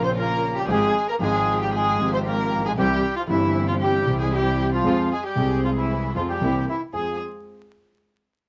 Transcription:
Already playing: A#1 A#2 C#3 F3 A#3 C#4 F4
0.04 C4 C5
0.17 A#3 A#4
0.56 G4
0.60 G3
0.68 G#1 G#2 F3 G#3 C4 F4 G4 G#4
1.08 A#3 A#4
1.19 G#1 G#2 F3 G#3 C4 F4 G#4 G5
1.23 G5
1.61 G3 G4
1.73 G#3 G#4
1.97 G#1 G#2 F3 G#3 C4 F4 G4
2.13 C4 C5
2.26 A#3 A#4
2.51 A#1
2.58 A1
2.64 A#1 G#3 G#4
2.71 B1
2.76 C2 C3 E3 G3 C4 E4 G4
3.16 F3 F4
3.27 G1 G2 E3 G3 C4 E4
3.31 E3 E4 G4
3.68 F3 F4
3.81 G3 G4
4.05 C2 C3 E3 G3 C4 E4
4.09 G4
4.20 G#3 G#4
4.34 G3 G4
4.73 F3 F4
4.84 F2 F3 G#3 C4 F4 G#4
5.12 G#3 G#4
5.25 G3 G4
5.35 C2 C3 G#3 C4 G#4
5.64 F3 F4
5.77 E3 E4
6.15 F2 F3 G#3 C4 F4 G#4
6.29 G3 G4
6.41 C2 C3 E3 A#3 C4 E4 G4
6.68 E3 E4
6.93 F2 G#3 C4 F4 G#4

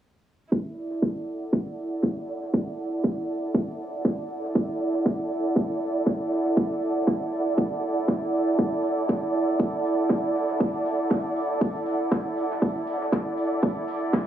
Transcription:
0.52 E4, kick, tambourine
0.71 A4 D5
0.77 tambourine
0.91 snare
1.02 F#5, kick, snare, tambourine
1.27 tambourine
1.53 kick, tambourine
1.78 tambourine
2.02 kick, snare, tambourine
2.28 snare, tambourine
2.43 snare
2.53 kick, open hi-hat
2.79 tambourine
3.04 kick, snare, tambourine
3.29 tambourine
3.54 kick, tambourine
3.79 tambourine
4.05 kick, snare, tambourine
4.31 tambourine
4.44 snare
4.55 kick, tambourine
4.80 tambourine
4.94 snare
5.05 kick, snare, tambourine
5.30 tambourine
5.56 kick, tambourine
5.81 tambourine
6.06 kick, snare, tambourine
6.32 snare, tambourine
6.46 snare
6.57 kick, open hi-hat
6.83 tambourine
7.07 kick, snare, tambourine
7.32 tambourine
7.58 kick, tambourine
7.83 tambourine
8.08 kick, snare, tambourine
8.33 tambourine
8.48 snare
8.58 kick, tambourine
8.84 open hi-hat, tambourine
8.98 snare
9.09 kick, snare, tambourine
9.34 open hi-hat, tambourine
9.59 kick, tambourine
9.84 open hi-hat, tambourine
10.09 kick, snare, tambourine
10.35 snare, open hi-hat, tambourine
10.49 snare
10.60 kick, open hi-hat
10.85 open hi-hat, tambourine
11.10 kick, snare, tambourine
11.36 open hi-hat, tambourine
11.61 kick, tambourine
11.86 open hi-hat, tambourine
12.11 kick, snare, tambourine
12.37 open hi-hat, tambourine
12.51 snare
12.62 kick, tambourine
12.87 open hi-hat, tambourine
13.01 snare
13.12 kick, snare, tambourine
13.37 open hi-hat, tambourine
13.62 kick, tambourine
13.88 open hi-hat, tambourine
14.13 kick, snare, tambourine

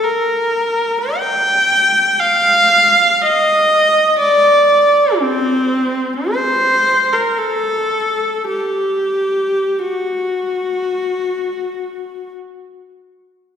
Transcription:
0.04 A#4
1.17 G5
2.20 F5
3.21 D#5
4.20 D5
5.19 C4
6.33 C5
7.12 A#4
7.38 A4
8.48 G4
9.79 F#4

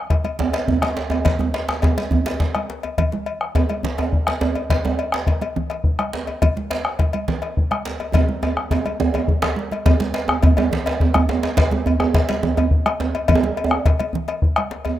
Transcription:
0.10 bombo low, cowbell, djembe slap
0.24 cowbell, high conga, djembe tone
0.39 djembe tone, low conga, djembe bass
0.53 bombo rim, cowbell, djembe slap
0.68 bombo low, high conga, djembe bass
0.82 bombo rim, cowbell, djembe slap, high conga
0.97 djembe slap
1.10 cowbell, djembe tone
1.12 djembe tone
1.25 bombo low, cowbell, djembe slap, high conga, low conga, djembe bass
1.39 bombo rim, djembe slap, high conga, djembe bass
1.54 cowbell, djembe slap
1.69 bombo rim, djembe slap, high conga
1.82 bombo rim, bombo low, cowbell, djembe slap, djembe tone
1.98 cowbell, djembe slap, high conga, djembe tone
2.11 djembe slap, djembe bass, low conga
2.13 djembe bass
2.26 cowbell, djembe slap
2.28 djembe slap
2.40 bombo rim, bombo low, djembe slap, high conga
2.55 bombo rim, cowbell, high conga
2.70 djembe slap
2.83 cowbell, djembe tone
2.98 bombo low, cowbell, djembe bass, low conga
3.12 djembe slap, high conga
3.26 cowbell, djembe slap
3.41 bombo rim
3.55 bombo low, cowbell, djembe slap, djembe tone
3.69 cowbell, djembe tone, high conga
3.83 djembe slap, djembe bass, low conga
3.98 bombo rim, cowbell, djembe slap, djembe tone
4.13 bombo low, high conga
4.27 bombo rim, cowbell, djembe slap, high conga
4.41 djembe slap, djembe tone
4.55 cowbell, djembe tone
4.70 bombo low, cowbell, djembe slap, low conga, djembe bass
4.85 djembe slap, high conga, djembe tone
4.99 cowbell, djembe slap
5.12 bombo rim, djembe slap
5.27 bombo low, cowbell, djembe slap
5.41 cowbell, high conga, djembe tone
5.56 low conga, djembe bass
5.70 bombo rim, cowbell, djembe slap
5.84 bombo low, high conga
5.99 bombo rim, cowbell, high conga
6.13 djembe slap
6.27 cowbell, djembe tone
6.42 bombo low, cowbell, low conga, djembe bass
6.57 djembe slap, high conga
6.71 cowbell, djembe slap
6.85 bombo rim
6.99 bombo low, cowbell, djembe slap
7.13 cowbell, high conga, djembe tone
7.28 djembe slap, djembe bass, low conga
7.42 bombo rim, cowbell, djembe slap
7.57 bombo low, high conga
7.71 bombo rim, cowbell, high conga
7.85 djembe slap
8.00 cowbell, djembe tone
8.13 bombo low, cowbell, djembe tone, low conga, djembe bass
8.29 high conga
8.42 bombo rim, cowbell, high conga, djembe tone
8.57 bombo rim, high conga
8.71 bombo low, cowbell, djembe slap, djembe tone
8.85 cowbell, high conga, djembe tone
9.00 djembe tone, low conga, djembe bass
9.14 cowbell, djembe tone, low conga, djembe bass
9.28 bombo low, low conga, djembe bass
9.42 bombo rim, cowbell, djembe slap, low conga, djembe bass
9.56 djembe slap, high conga
9.71 cowbell, djembe slap, high conga
9.86 bombo low, cowbell, djembe tone, low conga, djembe bass
10.00 djembe slap, high conga
10.14 cowbell, djembe slap
10.28 bombo rim, djembe tone
10.43 bombo low, cowbell, djembe slap, djembe bass
10.57 cowbell, djembe tone, high conga
10.72 djembe slap, djembe bass, low conga
10.86 cowbell, djembe slap
11.00 bombo low, djembe tone
11.14 bombo rim, cowbell, high conga, djembe bass
11.29 djembe slap, djembe tone
11.43 cowbell, djembe slap, djembe tone
11.57 bombo low, cowbell, djembe slap, low conga, djembe bass
11.71 djembe slap, high conga, djembe tone
11.86 cowbell, djembe bass
12.00 bombo rim, djembe tone
12.14 bombo low, cowbell, djembe slap
12.29 cowbell, djembe slap, djembe tone, high conga
12.43 djembe tone, low conga, djembe bass
12.57 bombo rim, cowbell, djembe slap, djembe bass
12.71 bombo low, high conga
12.86 bombo rim, cowbell, high conga
13.00 djembe slap, djembe tone
13.15 cowbell, djembe tone
13.28 bombo low, cowbell, djembe tone, djembe bass, low conga
13.35 djembe tone
13.43 djembe slap, high conga
13.57 cowbell, djembe slap
13.64 djembe tone
13.71 bombo rim
13.85 bombo low, cowbell, djembe slap
13.99 cowbell, djembe tone, high conga
14.13 djembe bass, low conga
14.28 bombo rim, cowbell, djembe slap
14.42 bombo low, high conga
14.56 bombo rim, cowbell, high conga
14.71 djembe slap
14.85 cowbell, djembe tone

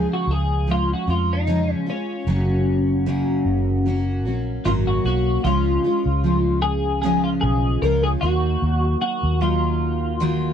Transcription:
Already playing: C#3 F3 G#3 C#4 F4
0.13 F#4
0.27 C#2 G#4
0.67 F3 G#3 C#4 F4
0.71 F4
0.93 F#4
1.07 F2 G#3 C#4 F4
1.33 D#4
1.47 C#3 F3 G#3 C#4 F4
1.73 C#4
1.86 G#3 C#4 F4
2.27 F#1 F#2 C#3 F#3 A#3 C#4 F#4
3.06 F#2 C#3 F#3 A#3 C#4 F#4
3.46 F#1
3.86 F#3 A#3 C#4 F#4
4.25 A#1 F#3 A#3 C#4 F#4
4.65 G#1 F#2 C#3 F#3 A#3 C#4 F4 F#4
4.87 F#4
5.05 B1 F#3 A#3 C#4 F#4
5.44 C#2 C#3 F3 G#3 C#4 F4
5.84 G#3 C#4 F4
6.06 C#2
6.24 F3 G#3 C#4 F4
6.62 G#4
7.02 C#3 F3 G#3 C#4 F4 G#4
7.24 F4
7.41 B1 G#4
7.82 C#2 F3 G#3 C#4 F4 A#4
8.03 G#4
8.21 D#2 D#3 F#3 A#3 D#4 F#4
8.62 D#2
9.02 F#4
9.23 D#2
9.41 F#3 A#3 D#4 F4
10.20 D#3 F#3 A#3 D#4 F4

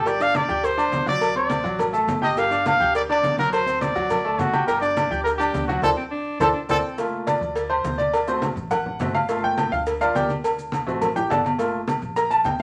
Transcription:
Already playing: G1
0.06 G3 G4 D5 G5, cowbell, high conga, low agogo, maracas
0.20 D4 D5 F5 D6, high conga, maracas
0.34 D5, cowbell, high conga, low timbale, low agogo, maracas
0.48 D2 G4 G5 G6, high conga, maracas
0.63 C5, cowbell, high conga, low agogo, maracas
0.77 D4 D5 D6, high conga, low agogo, maracas
0.92 D2, cowbell, high conga, low timbale, maracas
1.06 F#3 F#4 D5 F#5, high conga, low agogo, maracas
1.21 cowbell, high conga, low agogo, maracas
1.36 C4 C5 D5 C6, high conga
1.50 cowbell, high conga, low timbale, low agogo, maracas
1.64 A1 F#3 F#4 F#5, maracas
1.79 cowbell, high conga, low conga, low agogo, maracas
1.93 A3 A4 A5, high conga, maracas
2.07 G1, cowbell, high conga, low timbale, low agogo, maracas
2.22 G4 D#5 G5 G6, high conga, low agogo, maracas
2.37 G3 G4 F5 G5, cowbell, high conga, low agogo, maracas
2.51 D4 D5 D6, high conga, maracas
2.66 F5, cowbell, high conga, low timbale, low agogo, maracas
2.80 D2 G4 G5 G6, high conga, maracas
2.95 D5, cowbell, high conga, low agogo, maracas
3.09 D4 D5 D6, high conga, low agogo
3.23 D2, cowbell, high conga, low timbale, maracas
3.38 F#3 F#4 A#4 F#5, high conga, low agogo, maracas
3.53 C5, cowbell, high conga, low agogo, maracas
3.66 C4 C5 C6, high conga, maracas
3.81 D5, cowbell, high conga, low timbale, low agogo, maracas
3.95 D2 F#3 F#4 F#5, maracas
4.10 cowbell, high conga, low conga, low agogo, maracas
4.24 A3 A4 A5, high conga
4.38 G1 F#4, cowbell, high conga, low timbale, low agogo, maracas
4.53 G4 G5 G6, high conga, low agogo, maracas
4.67 G3 G4 A#4 G5, cowbell, high conga, low agogo, maracas
4.81 D4 D5 D6, high conga, maracas
4.97 cowbell, high conga, low timbale, low agogo, maracas
5.11 D2 G4 G5 G6, high conga, maracas
5.24 A#4, cowbell, high conga, low agogo, maracas
5.38 D4 G4 D5 D6, high conga, low agogo, maracas
5.54 D2, cowbell, high conga, low timbale, maracas
5.67 F#3 F#4 F#5, high conga, low agogo, maracas
5.82 D2 A4 C5 D5, cowbell, high conga, high timbale, maracas
5.97 C4
6.11 D4
6.40 D2 D4 A4 C5 D5, cowbell, high conga, high timbale, maracas
6.53 D4
6.68 D2 C4 A4 C5 D5, cowbell, high conga, high timbale, maracas
6.98 A3 A#3 F4, cowbell, high conga, low agogo, maracas
7.13 high conga
7.27 D5, cowbell, high conga, low timbale, low agogo, maracas
7.41 D2, high conga, maracas
7.55 cowbell, high conga, low agogo, maracas
7.70 C5, high conga, low agogo
7.84 D2, cowbell, high conga, low timbale, maracas
7.98 D5, high conga, low agogo, maracas
8.13 cowbell, high conga, low agogo, maracas
8.27 A3 C4 F#4 C5, high conga, maracas
8.42 cowbell, high conga, low timbale, low agogo, maracas
8.56 A1, maracas
8.71 F#5, cowbell, high conga, low conga, low agogo, maracas
8.86 high conga, low conga
8.99 G1 A3 C4 F#4, cowbell, high conga, low timbale, low agogo, maracas
9.14 F5, high conga, low agogo, maracas
9.29 A3 A#3 F4, cowbell, high conga, low agogo, maracas
9.44 G5, high conga
9.58 cowbell, high conga, low timbale, low agogo, maracas
9.71 D2 F5, high conga, maracas
9.86 cowbell, high conga, low agogo, maracas
10.01 F4 A#4 D5 F5, high conga, low agogo, maracas
10.15 D2 G4 A#4 D5 G5, cowbell, high conga, low timbale, maracas
10.29 high conga, low agogo, maracas
10.44 cowbell, low agogo, maracas
10.58 high conga, maracas
10.72 cowbell, high conga, low timbale, low agogo, maracas
10.87 A1 A3 C4 F#4, maracas
11.01 cowbell, high conga, low conga, low agogo, maracas
11.16 G4 G5, high conga, low conga, high timbale, maracas
11.30 G1 A4 D5 F#5 A5, cowbell, high conga, low timbale, low agogo, maracas
11.45 high conga, low timbale, low agogo, maracas
11.58 A3 A#3 F4, cowbell, low agogo, maracas
11.73 high conga
11.88 cowbell, high conga, low timbale, low agogo, maracas
12.02 A#1, high conga, maracas
12.16 A#5, cowbell, high conga, low agogo, maracas
12.31 A5, high conga, low agogo, maracas
12.44 D2 G5, cowbell, high conga, low timbale, maracas
12.59 maracas

